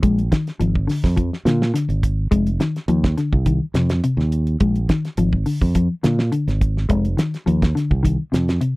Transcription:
0.03 A#1 G#3, kick, closed hi-hat
0.19 closed hi-hat
0.32 D#3, kick, snare, closed hi-hat
0.47 snare, closed hi-hat
0.60 G#1 F3, closed hi-hat
0.75 kick
0.87 D3, snare, open hi-hat
1.04 F2, kick, snare
1.17 F3, kick, closed hi-hat
1.33 snare
1.45 A#2 D3, snare, closed hi-hat
1.62 snare
1.74 D3, snare, closed hi-hat
1.89 G#1, closed hi-hat
2.03 kick, closed hi-hat
2.31 F1 G#3, kick, closed hi-hat
2.47 closed hi-hat
2.60 D#3, snare, closed hi-hat
2.76 snare, closed hi-hat
2.88 D#2 F3, closed hi-hat
3.04 kick, snare, closed hi-hat
3.17 D3, snare, closed hi-hat
3.33 C2, kick
3.46 D#3, kick, closed hi-hat
3.74 F2 C3, snare, closed hi-hat
3.90 snare, closed hi-hat
4.04 C3, closed hi-hat
4.17 D#2, snare
4.32 closed hi-hat
4.47 closed hi-hat
4.60 A#1 G#3, kick, closed hi-hat
4.76 closed hi-hat
4.89 D#3, kick, snare, closed hi-hat
5.05 snare, closed hi-hat
5.17 G#1 F3, closed hi-hat
5.33 kick
5.46 D3, open hi-hat
5.61 F2, kick
5.75 F3, kick, closed hi-hat
6.03 A#2 D3, snare, closed hi-hat
6.19 snare
6.32 D3, closed hi-hat
6.48 G#1, snare, closed hi-hat
6.61 kick, closed hi-hat
6.77 snare
6.89 F1 G#3, kick, closed hi-hat
7.05 closed hi-hat
7.17 D#3, snare, closed hi-hat
7.34 snare, closed hi-hat
7.46 D#2 F3, closed hi-hat
7.62 kick, snare, closed hi-hat
7.75 D3, snare, closed hi-hat
7.91 C2, kick
8.03 D#3, kick, closed hi-hat
8.32 F2 C3, snare, closed hi-hat
8.49 snare, closed hi-hat
8.61 C3, closed hi-hat

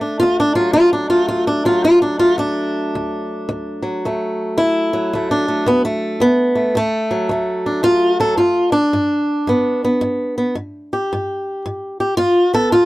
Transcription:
Already playing: D2 A3
0.01 D4
0.20 D2 F4
0.40 D4
0.55 F#3 F4
0.73 D2 F4
0.93 D4
1.10 A3 F4
1.28 D2 F4
1.47 D4
1.65 F#3 F4
1.84 D2 F4
2.02 D4
2.19 A3 F4
2.38 D2 D4
2.95 D2
3.49 D2
3.82 F#3
4.05 D2 A3
4.58 D2 E4
4.93 F#3
5.13 D2 A3
5.31 D4
5.48 A3
5.66 D2 B3
5.85 A3
6.20 D2 B3
6.55 A3
6.75 D2 A3
7.11 F#3
7.29 D2 A3
7.66 D4
7.83 D2 F4
8.20 F#3 A4
8.37 G2 F4
8.72 D4
8.93 G2
9.47 G2 B3
9.85 B3
10.01 G2
10.38 B3
10.55 G2
10.93 G4
11.13 G2
11.66 G2
12.00 G4
12.17 G2 F4
12.53 B3 A4
12.72 D2 F4

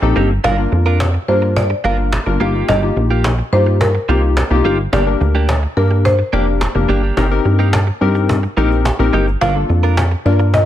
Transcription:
Already playing: downlifter
0.02 A#1 C4 D#4 G4 A4, muted clean electric guitar stroke
0.16 G1 A#3 D#4 G4
0.30 muted clean electric guitar stroke
0.44 G1 A#3 D4 F4 A#4 F5, cajon bass
0.58 A#3 D4 F4 A#4, muted clean electric guitar stroke
0.72 F2, muted clean electric guitar stroke
0.86 D4 F4 A#4
1.00 muted clean electric guitar stroke, cajon bass, cajon slap
1.14 muted clean electric guitar stroke
1.28 G2 A#3 D4 F4 A#4 C5
1.42 muted clean electric guitar stroke
1.56 D5, cajon bass
1.70 muted clean electric guitar stroke
1.84 G1 A#3 D4 F4 A#4 F5
1.98 muted clean electric guitar stroke
2.12 muted clean electric guitar stroke, cajon bass, cajon slap
2.26 G1 A#3 D4 F4 A#4, muted clean electric guitar stroke
2.40 G1 A#3 D#4 F4 G4
2.54 A#3 F4 G4
2.68 G1 A#3 F4 G4 D#5, cajon bass
2.82 A#3 D#4 F4 G4, muted clean electric guitar stroke
2.96 A#1, muted clean electric guitar stroke
3.10 A#3 F4 G4
3.24 cajon bass, cajon slap
3.39 muted clean electric guitar stroke
3.52 G2 A#3 D#4 F4 G4 C5
3.67 muted clean electric guitar stroke
3.81 A#4, cajon bass
3.95 muted clean electric guitar stroke
4.08 C2 A#3 D#4 F4 G4
4.23 muted clean electric guitar stroke
4.37 cajon bass, cajon slap
4.50 C2 A#3 D#4 F4 G4, muted clean electric guitar stroke
4.65 G1 A#3 F4 G4
4.93 G1 A#3 D4 G4 A#4 D5, cajon bass
5.07 A#3 D4 G4 A#4, muted clean electric guitar stroke
5.21 D2, muted clean electric guitar stroke, cajon slap
5.35 A#3 D4 G4
5.49 cajon bass, cajon slap
5.63 muted clean electric guitar stroke
5.77 G2 A#3 D4 G4 A#4, cajon slap
5.91 muted clean electric guitar stroke
6.05 C5, cajon bass
6.19 muted clean electric guitar stroke
6.33 F1 A#3 D4 G4 A#4 D5, cajon slap
6.47 muted clean electric guitar stroke
6.61 muted clean electric guitar stroke, cajon bass, cajon slap
6.75 F1 A#3 D4 G4 A#4, muted clean electric guitar stroke
6.89 G1 A#3 D4 G4, cajon slap
7.03 A#3 D4 G4
7.17 G1 A#3 C4 D#4 G4 A#4, cajon bass
7.31 C4 D#4 G4 A#4, muted clean electric guitar stroke, cajon slap
7.45 G2, muted clean electric guitar stroke, cajon slap
7.59 A#3 D#4 G4, cajon slap
7.73 muted clean electric guitar stroke, cajon bass, cajon slap
7.87 muted clean electric guitar stroke, cajon slap
8.01 G2 C4 D#4 G4 A#4, cajon slap
8.15 muted clean electric guitar stroke, cajon slap
8.29 cajon bass
8.43 muted clean electric guitar stroke, cajon slap
8.57 A#1 A#3 C4 D#4 G4 A#4, cajon slap
8.71 muted clean electric guitar stroke, cajon slap
8.85 cajon bass, cajon slap
8.99 A#1 C4 D#4 G4 A#4, muted clean electric guitar stroke, cajon slap
9.13 G1 A#3 D#4 G4, cajon slap
9.27 muted clean electric guitar stroke, cajon slap
9.41 G1 A#3 D4 F4 A#4 F5, cajon bass
9.55 A#3 D4 F4 A4, muted clean electric guitar stroke, cajon slap
9.69 F2, muted clean electric guitar stroke, cajon slap
9.83 D4 F4 A#4, cajon slap
9.97 cajon bass, cajon slap
10.11 muted clean electric guitar stroke, cajon slap
10.25 G2 A#3 D4 F4 A#4 D5, cajon slap
10.40 muted clean electric guitar stroke, cajon slap
10.54 D#5, cajon bass

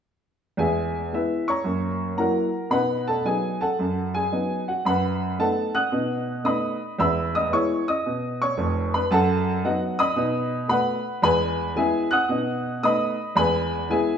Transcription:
0.57 E2 G#3 G#4 E5 G#5
1.13 G#3 B3 E4 B4 E5
1.48 C#5 A#5 C#6
1.64 F#2 A#3
2.17 F#3 A#3 E4 A#4 F#5 A#5
2.70 B2 D#4 B4 F#5 B5
3.08 A4 A5
3.25 F#3 B3 D#4 G#4 G#5
3.61 A4 F#5 A5
3.79 F#2
4.14 G#4 G#5
4.32 F#3 B3 D#4
4.68 F#4 F#5
4.85 F#2 B4 F#5 B5
5.39 A3 B3 D#4 A4 F#5 A5
5.75 F#5 D#6 F#6
5.92 B2 D#4
6.44 A3 B3 D#4 D#5 B5 D#6
6.99 E2 G#3 E5 B5 E6
7.35 D#5 D#6
7.52 G#3 B3 E4 C#5 C#6
7.88 D#5 D#6
8.06 B2
8.42 C#5 C#6
8.57 F1 F2
8.94 B4 B5
9.11 F#2 A4 F#5 A5
9.64 F#3 B3 D#4 F#4 D#5 F#5
9.99 D#5 B5 D#6
10.16 B2 D#4
10.68 A3 B3 F#4 B4 F#5 B5
11.22 E2 G#3 B4 G#5 B5
11.76 G#3 B3 E4 G#4 E5 G#5
12.11 F#5 D#6 F#6
12.29 B2 D#4
12.83 A3 B3 D#4 D#5 B5 D#6
13.36 E2 G#3 B4 G#5 B5
13.90 G#3 B3 E4 G#4 E5 G#5

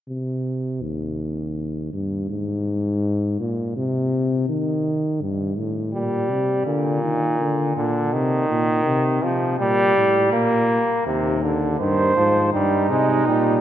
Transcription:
0.08 C3
0.82 D#2
1.93 G2
2.30 G#2
3.40 A#2
3.77 C3
4.49 D#3
5.22 G2
5.58 A2
5.94 A#2 G3
6.30 C3
6.66 A#2 D3
7.03 D#3
7.40 D3
7.77 A#2 D3
8.13 C3 D#3
8.49 A#2
8.86 C3
9.23 C3 F3
9.59 A#2 G3
9.96 A2
10.33 A#2 A#3
11.07 D#2 C3
11.43 D3
11.80 G2 D#3 C5
12.17 G#2 F3
12.53 G2 G3 D#4
12.90 C3 G#3
13.27 A#2 G3

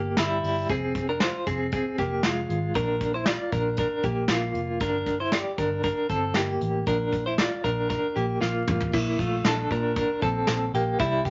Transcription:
Already playing: G1 A#3 G4
0.17 G1 G3 E4, snare, closed hi-hat
0.44 G1, open hi-hat
0.69 F1 C4 G#4, kick, closed hi-hat
0.95 kick, closed hi-hat
1.09 D4 A#4
1.20 F4 C5, snare, closed hi-hat
1.47 F1 C4 G#4, kick, closed hi-hat
1.72 C4 G#4, kick, closed hi-hat
1.98 F1 A#3 G4, kick, closed hi-hat
2.23 F1 G#3 F4, snare, closed hi-hat
2.49 G#1, closed hi-hat
2.75 A#1 D4 A#4, kick, closed hi-hat
3.01 kick, closed hi-hat
3.14 E4 C5
3.26 F4 D5, snare, closed hi-hat
3.52 A#1 D4 A#4, kick, closed hi-hat
3.77 D4 A#4, kick, closed hi-hat
4.03 A#1 A#3 G4, kick, closed hi-hat
4.28 A#1 A#3 F4, snare
4.54 F1, closed hi-hat
4.80 G1 D4 A#4, kick, closed hi-hat
5.06 kick, closed hi-hat
5.20 E4 C5
5.32 G4 D5, snare, closed hi-hat
5.58 G1 D4 A#4, kick, closed hi-hat
5.83 D4 A#4, kick, closed hi-hat
6.09 G1 C4 A4, kick, closed hi-hat
6.34 G1 A#3 G4, snare, closed hi-hat
6.61 A1, closed hi-hat
6.87 A#1 D4 A#4, kick, closed hi-hat
7.13 kick, closed hi-hat
7.26 E4 C5
7.38 F4 D5, snare, closed hi-hat
7.64 A#1 D4 A#4, kick, closed hi-hat
7.90 D4 A#4, kick, closed hi-hat
8.16 A#1 A#3 G4, closed hi-hat
8.41 A#1 A#3 F4, snare
8.67 A1, mid tom
8.80 floor tom
8.93 A#1 A#3 E4, kick, crash
9.19 A#1 A3 F4, kick, closed hi-hat
9.44 A#1 D4 A4, snare, closed hi-hat
9.71 A#2 D4 A#4, kick, closed hi-hat
9.96 D4 A#4, kick, closed hi-hat
10.22 A#1 C4 A4, kick, closed hi-hat
10.47 A#1, snare, closed hi-hat
10.74 A#1 A#3 G4, closed hi-hat
10.99 C2 G3 E4, kick, closed hi-hat
11.25 C2 A#3 G4, kick, closed hi-hat

